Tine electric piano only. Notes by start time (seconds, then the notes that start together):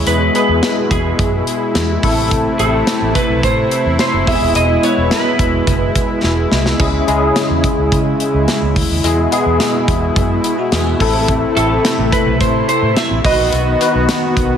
0.06 G#3 B3 E4 G#4
0.34 G#3 B3 E4 G#4
2.02 A3 C4 E4 A4
2.59 A3 C4 E4 A4
4.27 G#3 B3 E4 G4
4.35 G#4
4.83 G#3 B3 E4 B4
6.79 G#3 C#4 E4 G#4
7.07 G#3 C#4 E4 G#4
9.04 G#3 B3 E4 G#4
9.31 G#3 B3 E4 G#4
10.44 E4
10.58 F#4
10.72 G#4
10.87 B4
11.00 A3 C4 E4 A4
11.56 A3 C4 E4 A4
13.24 B3 D#4 F#4 B4
13.80 B3 D#4 F#4 B4